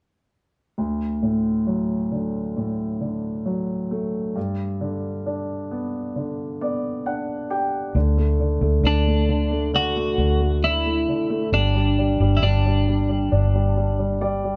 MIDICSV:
0, 0, Header, 1, 4, 480
1, 0, Start_track
1, 0, Key_signature, 2, "major"
1, 0, Tempo, 895522
1, 420, Time_signature, 4, 2, 24, 8
1, 7805, End_track
2, 0, Start_track
2, 0, Title_t, "Clean electric guitar"
2, 0, Program_c, 0, 27
2, 4753, Note_on_c, 0, 62, 59
2, 5205, Note_off_c, 0, 62, 0
2, 5230, Note_on_c, 0, 66, 71
2, 5703, Note_on_c, 0, 64, 67
2, 5719, Note_off_c, 0, 66, 0
2, 6160, Note_off_c, 0, 64, 0
2, 6184, Note_on_c, 0, 62, 69
2, 6629, Note_on_c, 0, 64, 41
2, 6638, Note_off_c, 0, 62, 0
2, 6662, Note_on_c, 0, 62, 54
2, 6663, Note_off_c, 0, 64, 0
2, 7600, Note_off_c, 0, 62, 0
2, 7805, End_track
3, 0, Start_track
3, 0, Title_t, "Grand piano"
3, 0, Program_c, 1, 0
3, 418, Note_on_c, 1, 38, 38
3, 531, Control_c, 1, 64, 127
3, 655, Note_on_c, 1, 45, 32
3, 894, Note_on_c, 1, 54, 37
3, 1135, Note_on_c, 1, 50, 33
3, 1368, Note_off_c, 1, 45, 0
3, 1376, Note_on_c, 1, 45, 33
3, 1603, Note_off_c, 1, 50, 0
3, 1612, Note_on_c, 1, 50, 33
3, 1836, Note_off_c, 1, 54, 0
3, 1852, Note_on_c, 1, 54, 36
3, 2096, Note_on_c, 1, 57, 39
3, 2315, Note_off_c, 1, 50, 0
3, 2317, Note_off_c, 1, 45, 0
3, 2318, Note_off_c, 1, 38, 0
3, 2322, Note_off_c, 1, 54, 0
3, 2331, Note_off_c, 1, 57, 0
3, 2335, Note_on_c, 1, 43, 42
3, 2346, Control_c, 1, 64, 0
3, 2425, Control_c, 1, 64, 127
3, 2577, Note_on_c, 1, 50, 37
3, 2821, Note_on_c, 1, 62, 40
3, 3062, Note_on_c, 1, 59, 39
3, 3292, Note_off_c, 1, 50, 0
3, 3300, Note_on_c, 1, 50, 36
3, 3537, Note_off_c, 1, 59, 0
3, 3545, Note_on_c, 1, 59, 37
3, 3545, Note_on_c, 1, 74, 47
3, 3759, Note_off_c, 1, 62, 0
3, 3766, Note_off_c, 1, 74, 0
3, 3785, Note_on_c, 1, 78, 50
3, 3787, Note_on_c, 1, 62, 42
3, 4006, Note_off_c, 1, 78, 0
3, 4022, Note_on_c, 1, 67, 37
3, 4023, Note_on_c, 1, 79, 49
3, 4236, Note_off_c, 1, 43, 0
3, 4239, Note_off_c, 1, 50, 0
3, 4241, Note_off_c, 1, 59, 0
3, 4245, Note_off_c, 1, 79, 0
3, 4249, Note_off_c, 1, 62, 0
3, 4254, Note_off_c, 1, 67, 0
3, 4262, Note_on_c, 1, 50, 47
3, 4268, Control_c, 1, 64, 0
3, 4373, Control_c, 1, 64, 127
3, 4381, Note_on_c, 1, 57, 39
3, 4493, Note_off_c, 1, 50, 0
3, 4501, Note_on_c, 1, 50, 41
3, 4612, Note_off_c, 1, 57, 0
3, 4620, Note_on_c, 1, 57, 41
3, 4730, Note_off_c, 1, 50, 0
3, 4738, Note_on_c, 1, 50, 42
3, 4854, Note_off_c, 1, 57, 0
3, 4862, Note_on_c, 1, 57, 41
3, 4970, Note_off_c, 1, 50, 0
3, 4978, Note_on_c, 1, 50, 41
3, 5092, Note_off_c, 1, 57, 0
3, 5101, Note_on_c, 1, 57, 38
3, 5211, Note_off_c, 1, 50, 0
3, 5219, Note_on_c, 1, 50, 51
3, 5331, Note_off_c, 1, 57, 0
3, 5339, Note_on_c, 1, 57, 40
3, 5451, Note_off_c, 1, 50, 0
3, 5459, Note_on_c, 1, 50, 38
3, 5571, Note_off_c, 1, 57, 0
3, 5579, Note_on_c, 1, 57, 38
3, 5694, Note_off_c, 1, 50, 0
3, 5703, Note_on_c, 1, 50, 38
3, 5811, Note_off_c, 1, 57, 0
3, 5819, Note_on_c, 1, 57, 39
3, 5933, Note_off_c, 1, 50, 0
3, 5941, Note_on_c, 1, 50, 38
3, 6049, Note_off_c, 1, 57, 0
3, 6057, Note_on_c, 1, 57, 42
3, 6173, Note_off_c, 1, 50, 0
3, 6175, Note_off_c, 1, 57, 0
3, 6177, Note_on_c, 1, 55, 44
3, 6188, Control_c, 1, 64, 0
3, 6289, Note_off_c, 1, 55, 0
3, 6294, Control_c, 1, 64, 127
3, 6297, Note_on_c, 1, 55, 41
3, 6417, Note_off_c, 1, 55, 0
3, 6425, Note_on_c, 1, 55, 43
3, 6536, Note_off_c, 1, 55, 0
3, 6544, Note_on_c, 1, 55, 41
3, 6656, Note_off_c, 1, 55, 0
3, 6664, Note_on_c, 1, 55, 42
3, 6777, Note_off_c, 1, 55, 0
3, 6785, Note_on_c, 1, 55, 42
3, 6893, Note_off_c, 1, 55, 0
3, 6901, Note_on_c, 1, 55, 43
3, 7010, Note_off_c, 1, 55, 0
3, 7018, Note_on_c, 1, 55, 40
3, 7138, Note_on_c, 1, 62, 50
3, 7254, Note_off_c, 1, 55, 0
3, 7262, Note_on_c, 1, 55, 39
3, 7371, Note_off_c, 1, 55, 0
3, 7379, Note_on_c, 1, 55, 40
3, 7491, Note_off_c, 1, 55, 0
3, 7499, Note_on_c, 1, 55, 37
3, 7608, Note_off_c, 1, 55, 0
3, 7616, Note_on_c, 1, 55, 42
3, 7618, Note_on_c, 1, 74, 56
3, 7733, Note_off_c, 1, 55, 0
3, 7741, Note_on_c, 1, 55, 39
3, 7805, Note_off_c, 1, 55, 0
3, 7805, Note_off_c, 1, 62, 0
3, 7805, Note_off_c, 1, 74, 0
3, 7805, End_track
4, 0, Start_track
4, 0, Title_t, "Fingered electric bass"
4, 0, Program_c, 2, 33
4, 4261, Note_on_c, 2, 38, 72
4, 4599, Note_off_c, 2, 38, 0
4, 4616, Note_on_c, 2, 38, 58
4, 4730, Note_off_c, 2, 38, 0
4, 4736, Note_on_c, 2, 38, 73
4, 5436, Note_off_c, 2, 38, 0
4, 5456, Note_on_c, 2, 38, 55
4, 5917, Note_off_c, 2, 38, 0
4, 6177, Note_on_c, 2, 31, 73
4, 6517, Note_off_c, 2, 31, 0
4, 6540, Note_on_c, 2, 31, 69
4, 6652, Note_off_c, 2, 31, 0
4, 6659, Note_on_c, 2, 31, 71
4, 7118, Note_off_c, 2, 31, 0
4, 7142, Note_on_c, 2, 31, 73
4, 7805, Note_off_c, 2, 31, 0
4, 7805, End_track
0, 0, End_of_file